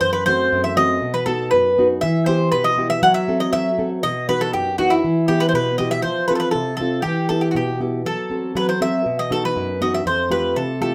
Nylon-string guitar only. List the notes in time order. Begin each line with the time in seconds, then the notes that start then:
0.01 F#2
0.27 A3 C4 F#4
0.52 F#2
0.76 A3 C4 F#4
1.02 B2
1.26 B3 D#4 F#4
1.53 F#2
1.78 B3 D#4 F#4
2.03 E3
2.27 B3 E4 G4
2.53 B2
2.78 B3 E4 G4
3.03 F#3
3.28 C4 F#4 A4
3.53 F#3
3.78 C4 F#4 A4
4.04 B2
4.29 B3 D#4 F#4
4.54 F#2
4.78 B3 D#4 F#4
5.04 E3
5.29 B3 E4 G4
5.54 B2
5.79 B3 E4 G4
6.05 F3
6.30 C4 F4 A4
6.55 C3
6.80 C4 F4 A4
7.06 E3
7.30 B3 E4 G4
7.55 B2
7.80 B3 E4 G4
8.05 F#3
8.30 C4 F#4 A4
8.55 F#3
8.81 C4 F#4 A4
9.06 B2
9.30 B3 D#4 F#4
9.56 F#2
9.81 B3 D#4 F#4
10.06 F2
10.30 A3 F4 G4
10.56 C3
10.81 A3 F4 G4